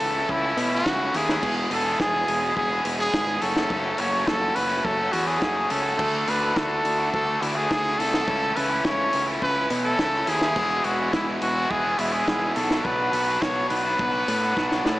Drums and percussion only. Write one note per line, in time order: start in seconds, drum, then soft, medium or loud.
0.00 open hi-hat medium
0.29 kick loud
0.58 open hi-hat medium
0.86 kick loud
0.86 snare medium
1.14 snare soft
1.14 open hi-hat medium
1.29 snare medium
1.43 kick loud
1.43 crash loud
1.71 open hi-hat medium
2.00 kick loud
2.00 snare loud
2.28 open hi-hat medium
2.57 kick medium
2.85 open hi-hat medium
3.14 kick loud
3.14 snare loud
3.42 snare soft
3.42 open hi-hat medium
3.56 snare medium
3.70 kick loud
3.98 open hi-hat medium
4.27 kick loud
4.27 snare loud
4.56 open hi-hat medium
4.85 kick loud
5.13 open hi-hat medium
5.42 kick loud
5.42 snare loud
5.70 open hi-hat medium
5.99 kick loud
5.99 crash loud
6.28 open hi-hat medium
6.56 kick loud
6.56 snare loud
6.85 open hi-hat medium
7.14 kick loud
7.43 open hi-hat medium
7.71 kick loud
7.71 snare loud
8.00 snare soft
8.00 open hi-hat medium
8.14 snare medium
8.28 kick loud
8.57 open hi-hat medium
8.85 kick loud
8.85 snare loud
9.13 open hi-hat medium
9.42 kick loud
9.70 open hi-hat medium
9.99 kick medium
9.99 snare loud
10.27 snare soft
10.27 open hi-hat medium
10.41 snare medium
10.56 kick loud
10.56 crash loud
10.84 open hi-hat medium
11.13 kick loud
11.13 snare loud
11.42 open hi-hat medium
11.71 kick loud
11.99 open hi-hat medium
12.28 kick loud
12.28 snare loud
12.56 snare soft
12.56 open hi-hat medium
12.71 snare medium
12.85 kick loud
13.13 open hi-hat medium
13.42 kick loud
13.42 snare loud
13.70 open hi-hat medium
13.99 kick loud
14.28 open hi-hat medium
14.57 kick loud
14.57 snare medium
14.72 snare medium
14.86 snare medium